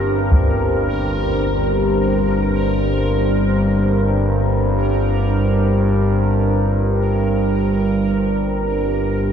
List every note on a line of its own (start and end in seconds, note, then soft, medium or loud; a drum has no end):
0.00 9.32 G1 medium
0.00 9.32 G2 medium
0.00 9.32 D4 medium
0.00 9.32 G4 medium
0.00 9.32 A#4 medium
0.00 9.32 C5 medium
0.31 taiko medium